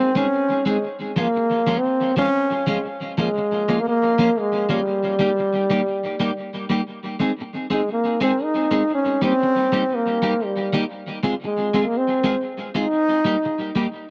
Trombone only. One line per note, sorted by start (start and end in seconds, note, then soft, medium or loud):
0.00 0.19 C4 loud
0.17 0.67 C#4 loud
0.68 0.86 G#3 medium
1.19 1.80 A#3 loud
1.78 2.18 C4 loud
2.18 2.65 C#4 loud
2.68 2.87 G#3 medium
3.19 3.81 G#3 loud
3.80 3.88 A#3 loud
3.89 4.41 A#3 loud
4.39 4.71 G#3 loud
4.70 6.71 G3 loud
7.72 7.91 G#3 medium
7.93 8.20 A#3 medium
8.23 8.45 C4 loud
8.43 8.93 D#4 loud
8.95 9.21 C#4 loud
9.25 9.96 C4 loud
9.95 10.47 A#3 medium
10.45 10.85 G3 medium
11.46 11.88 G#3 medium
11.86 11.99 A#3 medium
11.97 12.47 C4 loud
12.76 13.72 D#4 loud